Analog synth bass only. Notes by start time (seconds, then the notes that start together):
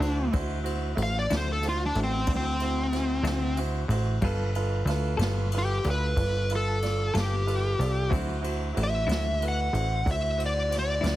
0.00 D2
0.34 D2
0.97 A1
1.31 D2
1.95 A1
2.27 D2
3.23 D2
3.88 A1
4.21 G1
4.85 D2
5.18 G1
5.85 D2
6.17 G1
7.14 G1
7.79 C2
8.12 D2
8.77 A1
9.08 D2
9.73 A1
10.06 D2
11.03 D2